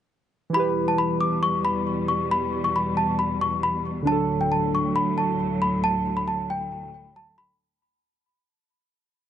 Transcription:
0.50 4.01 E3 medium
0.50 4.03 E4 medium
0.54 4.04 E2 medium
0.54 4.04 B2 medium
0.54 4.04 G3 medium
0.54 4.04 G4 medium
0.54 0.86 B5 loud
0.59 4.06 B4 medium
0.88 0.97 A5 medium
0.98 1.16 B5 medium
1.21 1.38 D6 medium
1.43 1.60 C#6 medium
1.65 2.06 B5 medium
2.08 2.26 C#6 medium
2.31 2.62 B5 loud
2.64 2.73 C#6 medium
2.76 2.93 B5 medium
2.97 3.15 A5 medium
3.19 3.36 B5 medium
3.41 3.59 C#6 medium
3.63 3.81 B5 medium
4.02 7.54 D3 medium
4.02 7.55 D4 medium
4.07 7.57 D2 medium
4.07 7.57 A2 medium
4.07 7.57 F#3 medium
4.07 4.38 A5 loud
4.12 7.59 A4 medium
4.41 4.49 G5 medium
4.52 4.69 A5 medium
4.75 4.92 C#6 medium
4.96 5.13 B5 medium
5.18 5.59 A5 medium
5.62 5.79 B5 medium
5.84 6.15 A5 loud
6.17 6.26 B5 medium
6.28 6.45 A5 medium
6.50 7.12 G5 medium
7.16 7.34 A5 medium
7.38 7.56 B5 medium

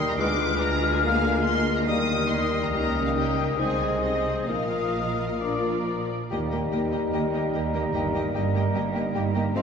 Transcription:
0.00 0.16 D#2 medium
0.00 0.16 D#3 medium
0.00 0.16 G3 medium
0.00 0.16 A#3 medium
0.00 0.15 D#4 medium
0.00 0.16 G4 medium
0.00 0.21 A#4 medium
0.00 0.16 D#5 medium
0.00 0.18 D#6 medium
0.10 0.20 A#5 medium
0.19 1.87 D2 medium
0.19 1.87 D3 medium
0.19 0.34 G#3 medium
0.19 0.99 G#3 medium
0.19 1.89 G#3 medium
0.19 0.34 B3 medium
0.19 1.83 F4 medium
0.19 1.83 G#4 medium
0.19 1.03 B4 medium
0.19 0.99 B4 medium
0.19 0.60 D6 medium
0.19 1.87 F6 medium
0.60 0.92 A#5 medium
0.92 1.03 G#5 medium
1.02 1.17 G#3 medium
1.02 2.69 A#3 medium
1.02 1.18 A#3 medium
1.02 1.83 A#4 soft
1.02 3.61 A#4 medium
1.02 1.44 F5 medium
1.43 1.75 C6 medium
1.77 1.87 A#5 medium
1.86 2.73 D#2 medium
1.86 2.72 D#3 medium
1.86 2.02 G3 medium
1.86 3.58 G3 medium
1.86 2.02 A#3 medium
1.86 2.69 D#4 soft
1.86 2.68 G4 soft
1.86 2.69 D#5 soft
1.86 2.29 D#6 medium
1.86 5.37 D#6 medium
2.28 2.61 C6 medium
2.63 2.71 A#5 soft
2.72 3.54 C#2 medium
2.72 3.55 C#3 medium
2.72 2.88 G3 soft
2.72 3.13 A#3 soft
2.72 3.13 D#4 soft
2.72 2.88 D#4 soft
2.72 3.13 G4 soft
2.72 3.13 D#5 soft
2.72 3.04 A#5 medium
3.06 3.10 F5 medium
3.16 3.58 A#3 soft
3.16 3.58 D#4 soft
3.16 3.58 G4 soft
3.16 3.58 D#5 soft
3.16 3.58 G5 medium
3.58 4.49 C2 soft
3.58 4.49 C3 soft
3.58 4.47 G#3 soft
3.58 3.74 G#3 soft
3.58 4.02 C4 soft
3.58 3.74 D#4 soft
3.58 4.02 D#4 soft
3.58 4.02 G#4 soft
3.58 4.48 C5 soft
3.58 4.02 D#5 soft
3.58 4.02 G#5 medium
4.02 4.48 C4 soft
4.02 4.48 D#4 soft
4.02 4.48 G#4 soft
4.02 4.48 D#5 medium
4.02 4.47 D#5 soft
4.48 6.10 A#1 soft
4.48 6.09 A#2 soft
4.48 5.40 F3 soft
4.48 6.07 A#3 soft
4.48 4.65 A#3 soft
4.48 4.64 D#4 soft
4.48 5.41 F4 soft
4.48 6.06 A#4 soft
4.48 5.40 A#4 soft
4.48 5.39 D#5 soft
4.48 5.84 F5 medium
5.41 6.11 F3 soft
5.41 5.57 A#3 soft
5.41 5.57 D4 soft
5.41 6.11 F4 soft
5.41 6.11 A#4 soft
5.41 6.11 D5 soft
5.41 6.09 D6 soft
6.31 6.68 D#2 medium
6.31 9.52 G3 medium
6.31 9.51 A#3 medium
6.31 6.40 A#3 soft
6.31 9.57 D#4 medium
6.31 7.90 G4 medium
6.31 6.39 G4 soft
6.31 9.52 A#4 medium
6.31 9.52 D#5 medium
6.31 6.40 D#5 medium
6.51 6.60 A#3 soft
6.51 6.61 G4 soft
6.51 6.59 D#5 soft
6.72 7.09 D#2 medium
6.72 6.81 A#3 soft
6.72 6.80 G4 soft
6.72 6.80 D#5 soft
6.92 7.01 A#3 soft
6.92 7.00 G4 soft
6.92 7.01 D#5 soft
7.13 7.49 D#2 medium
7.13 7.50 D#2 medium
7.13 7.22 A#3 soft
7.13 7.21 G4 soft
7.13 7.21 D#5 soft
7.34 7.42 A#3 soft
7.34 7.43 G4 soft
7.34 7.42 D#5 soft
7.54 7.90 D#2 medium
7.54 7.63 A#3 soft
7.54 7.63 G4 soft
7.54 7.62 D#5 soft
7.74 7.82 A#3 soft
7.74 7.83 G4 soft
7.74 7.82 D#5 soft
7.94 8.30 G1 medium
7.94 8.30 G2 medium
7.94 8.02 A#3 medium
7.94 9.53 D#4 medium
7.94 8.03 G4 medium
7.94 8.02 D#5 medium
8.14 8.22 A#3 soft
8.14 8.23 G4 soft
8.14 8.23 D#5 soft
8.34 8.70 G1 medium
8.34 8.71 G2 medium
8.34 8.43 A#3 medium
8.34 8.42 G4 soft
8.34 8.43 D#5 soft
8.55 8.63 A#3 soft
8.55 8.63 G4 medium
8.55 8.63 D#5 soft
8.74 9.11 G1 medium
8.74 9.11 G2 medium
8.74 8.84 A#3 medium
8.74 8.82 G4 medium
8.74 8.83 D#5 soft
8.94 9.04 A#3 medium
8.94 9.02 G4 medium
8.94 9.03 D#5 soft
9.14 9.51 G1 medium
9.14 9.51 G2 medium
9.14 9.24 A#3 medium
9.14 9.22 G4 soft
9.14 9.23 D#5 medium
9.34 9.44 A#3 medium
9.34 9.43 G4 medium
9.34 9.42 D#5 soft
9.54 9.62 G#1 medium
9.54 9.62 G#2 medium
9.54 9.62 G#3 medium
9.54 9.62 C4 medium
9.54 9.62 F4 medium
9.54 9.62 C5 medium
9.54 9.62 F5 medium

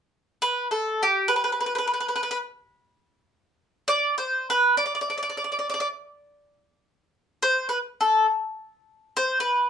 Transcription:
0.42 0.67 B4 medium
0.71 1.03 A4 medium
1.03 1.29 G4 medium
1.28 1.35 B4 medium
1.36 1.43 B4 medium
1.44 1.51 B4 medium
1.52 1.59 B4 soft
1.60 1.65 B4 medium
1.66 1.73 B4 soft
1.75 1.77 B4 medium
1.75 1.85 B4 medium
1.87 1.92 B4 medium
1.94 1.99 B4 medium
2.00 2.07 B4 medium
2.08 2.14 B4 soft
2.16 2.22 B4 medium
2.23 2.30 B4 medium
2.31 2.37 B4 medium
3.88 4.14 D5 medium
4.18 4.47 C5 medium
4.50 4.77 B4 medium
4.77 4.84 D5 medium
4.86 4.92 D5 medium
4.95 5.00 D5 medium
5.01 5.08 D5 soft
5.10 5.15 D5 medium
5.18 5.21 D5 soft
5.23 5.28 D5 medium
5.30 5.35 D5 soft
5.37 5.43 D5 soft
5.44 5.51 D5 soft
5.52 5.58 D5 soft
5.59 5.66 D5 soft
5.70 5.73 D5 medium
5.74 5.79 D5 medium
5.80 5.87 D5 medium
7.43 7.69 C5 medium
7.69 7.78 B4 medium
8.01 8.25 A4 medium
9.17 9.40 C5 medium
9.40 9.70 B4 medium

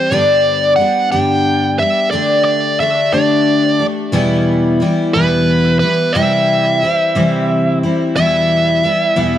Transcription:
0.00 0.10 G3 soft
0.00 0.11 C4 soft
0.00 0.11 G4 soft
0.00 0.12 C5 medium
0.07 0.72 D5 medium
0.11 0.78 G2 medium
0.11 0.79 D3 medium
0.11 0.77 G3 medium
0.11 0.78 B3 medium
0.11 0.80 D4 medium
0.11 0.81 G4 medium
0.76 1.12 G3 soft
0.76 1.11 B3 medium
0.76 1.08 F#5 medium
0.80 1.11 D4 medium
0.80 1.11 G4 medium
1.12 1.80 G2 soft
1.12 1.80 D3 medium
1.12 1.82 G3 medium
1.12 1.80 B3 medium
1.12 1.79 D4 medium
1.12 1.79 G4 medium
1.12 1.81 G5 medium
1.79 2.12 G3 soft
1.79 2.12 B3 soft
1.79 2.12 D4 soft
1.79 2.13 G4 soft
1.79 2.10 E5 medium
2.11 2.78 D3 medium
2.11 2.80 A3 medium
2.11 2.81 D4 medium
2.11 2.82 G4 medium
2.11 2.43 D5 medium
2.45 2.80 D5 medium
2.80 3.13 D3 medium
2.80 3.13 A3 medium
2.80 3.13 D4 medium
2.80 3.11 G4 medium
2.80 3.13 E5 medium
3.12 3.82 D3 medium
3.12 3.81 A3 medium
3.12 3.80 D4 medium
3.12 3.79 G4 medium
3.12 3.85 D5 medium
3.79 4.13 A3 soft
3.79 4.13 D4 soft
3.79 4.14 G4 soft
4.12 4.81 E2 medium
4.12 4.81 B2 medium
4.12 4.80 E3 medium
4.12 4.81 G3 medium
4.12 4.81 B3 medium
4.12 4.82 E4 medium
4.80 5.14 E3 medium
4.80 5.14 G3 medium
4.80 5.14 B3 medium
4.80 5.14 E4 medium
5.14 5.83 E2 soft
5.14 5.83 B2 medium
5.14 5.84 E3 medium
5.14 5.83 G3 medium
5.14 5.81 B3 medium
5.14 5.80 E4 medium
5.14 5.78 B4 medium
5.79 6.15 G3 soft
5.79 6.16 B3 soft
5.79 6.15 E4 soft
5.79 6.16 B4 medium
5.84 6.14 E3 soft
6.13 6.83 C3 medium
6.13 6.80 E3 medium
6.13 6.81 G3 medium
6.13 6.83 C4 medium
6.13 7.78 E5 medium
6.17 6.83 E4 medium
6.82 7.16 E3 soft
6.82 7.15 G3 medium
6.82 7.15 C4 medium
6.82 7.14 E4 medium
7.15 7.84 C3 medium
7.15 7.84 E3 medium
7.15 7.83 G3 medium
7.15 7.83 C4 medium
7.15 7.82 E4 medium
7.83 8.16 G3 soft
7.83 8.17 C4 soft
7.83 8.16 E4 soft
8.15 8.83 E2 medium
8.15 8.84 B2 medium
8.15 8.83 E3 medium
8.15 8.83 G3 medium
8.15 8.84 B3 medium
8.15 8.86 E4 medium
8.15 9.38 E5 loud
8.83 9.16 E3 medium
8.83 9.16 G3 soft
8.83 9.15 B3 medium
8.83 9.15 E4 soft
9.16 9.38 E2 medium
9.16 9.38 B2 medium
9.16 9.38 E3 medium
9.16 9.38 G3 medium
9.16 9.38 B3 medium
9.16 9.38 E4 medium

